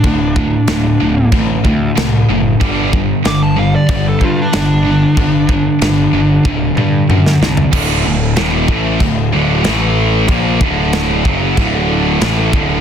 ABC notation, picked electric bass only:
X:1
M:4/4
L:1/8
Q:1/4=94
K:D
V:1 name="Picked electric bass" clef=bass
D,,,2 D,,, D,,, A,,, D,, =C,, F,,, | G,,,2 G,,,2 G,,, G,, G,,,2 | G,,,2 G,,, G,,, D,,, G,, F,, =C,, | D,,, D,,, _E,,, A,,, D,,, D,,, A,,,2 |
_B,,, D,,,2 F,,, D,,,2 A,,, D,,, |]